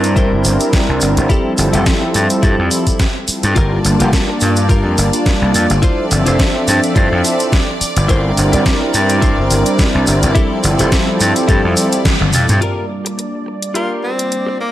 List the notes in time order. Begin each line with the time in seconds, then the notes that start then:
Already playing: G2 G3 C4 D4 E4 A#4
0.04 closed hi-hat, shaker
0.16 E4 A#4 C5, kick, closed hi-hat, shaker
0.32 G1
0.44 G1, open hi-hat, shaker
0.60 closed hi-hat, shaker
0.73 kick, snare, closed hi-hat, shaker
0.89 C2
1.01 G1, open hi-hat, shaker
1.17 G1 G3 C4 D4 E4 A#4, closed hi-hat, shaker
1.29 F3 G3 C4 E4 G4 A4, kick, closed hi-hat, shaker
1.58 G1, open hi-hat, shaker
1.73 F1 E4 G4 A4, closed hi-hat, shaker
1.86 kick, snare, closed hi-hat, shaker
2.01 muted clean electric guitar stroke
2.14 G2, muted clean electric guitar stroke, open hi-hat, shaker
2.30 closed hi-hat, shaker
2.43 G2 E4 G4 A4, kick, closed hi-hat, shaker
2.59 F2
2.71 open hi-hat, shaker
2.87 kick, closed hi-hat, shaker
2.99 kick, snare, closed hi-hat, shaker
3.28 G3 C4 E4 F4 A4, muted slap bass stroke, open hi-hat, shaker
3.43 G2, closed hi-hat, shaker
3.55 G1 G3 A#3 D4 F4 G4 A#4 D5 A5, kick, closed hi-hat, shaker
3.85 G1, open hi-hat, shaker
4.00 F1 F4 G4 A#4, closed hi-hat, shaker
4.13 kick, snare, closed hi-hat, shaker
4.28 muted clean electric guitar stroke
4.41 G2, muted clean electric guitar stroke, open hi-hat, shaker
4.56 closed hi-hat, shaker
4.69 F4 G4 A#4, kick, closed hi-hat, shaker
4.85 F2
4.98 G1, open hi-hat, shaker
5.13 closed hi-hat, shaker
5.26 kick, snare, closed hi-hat, shaker
5.42 C2
5.54 F2, open hi-hat, shaker
5.70 G1 G3 A#3 D4 F4 A4, closed hi-hat, shaker
5.82 F3 C4 D4 E4 F4 A4 C5 E5, kick, closed hi-hat, shaker
6.11 G1, open hi-hat, shaker
6.26 F1 E4 F4 C5, closed hi-hat, shaker
6.39 kick, snare, closed hi-hat, shaker
6.54 muted clean electric guitar stroke
6.67 G2, muted clean electric guitar stroke, open hi-hat, shaker
6.83 closed hi-hat, shaker
6.95 G2 E4 F4 C5, kick, closed hi-hat, shaker
7.12 F2
7.25 open hi-hat, shaker
7.39 F3 C4 D4 E4 A4, closed hi-hat, shaker
7.52 kick, snare, closed hi-hat, shaker
7.81 muted slap bass stroke, open hi-hat, shaker
7.96 G1, closed hi-hat, shaker
8.08 G1 G3 C4 D4 E4 A#4 C5, kick, closed hi-hat, shaker
8.37 G1, open hi-hat, shaker
8.52 G1 E4 A#4 D5, closed hi-hat, shaker
8.66 kick, snare, closed hi-hat, shaker
8.80 muted clean electric guitar stroke
8.93 G2, muted clean electric guitar stroke, open hi-hat, shaker
9.09 closed hi-hat, shaker
9.21 E4 A#4 C5, kick, closed hi-hat, shaker
9.38 G1
9.51 G1, open hi-hat, shaker
9.66 closed hi-hat, shaker
9.79 kick, snare, closed hi-hat, shaker
9.95 C2
10.07 G1, open hi-hat, shaker
10.22 G1 G3 C4 D4 E4 A#4, closed hi-hat, shaker
10.35 F3 G3 C4 E4 G4 A4, kick, closed hi-hat, shaker
10.64 G1, open hi-hat, shaker
10.79 F1 E4 G4 A4, closed hi-hat, shaker
10.92 kick, snare, closed hi-hat, shaker
11.07 muted clean electric guitar stroke
11.20 G2, muted clean electric guitar stroke, open hi-hat, shaker
11.36 closed hi-hat, shaker
11.48 G2 E4 G4 A4, kick, closed hi-hat, shaker
11.64 F2
11.77 open hi-hat, shaker
11.92 closed hi-hat, shaker
12.05 kick, snare, closed hi-hat, high tom, shaker
12.21 G1, high tom
12.33 F2 G3 C4 E4 F4 A4, open hi-hat, mid tom, shaker
12.49 G2, closed hi-hat, mid tom, shaker
12.61 G3 A#3 D4 F4 G4 A#4 D5 A5, closed hi-hat
13.05 muted clean electric guitar stroke, closed hi-hat
13.18 muted clean electric guitar stroke, closed hi-hat
13.46 muted clean electric guitar stroke
13.62 closed hi-hat
13.74 F4 G4 A#4, closed hi-hat
14.04 C4
14.19 closed hi-hat
14.32 closed hi-hat
14.46 muted clean electric guitar stroke
14.59 A#3, muted clean electric guitar stroke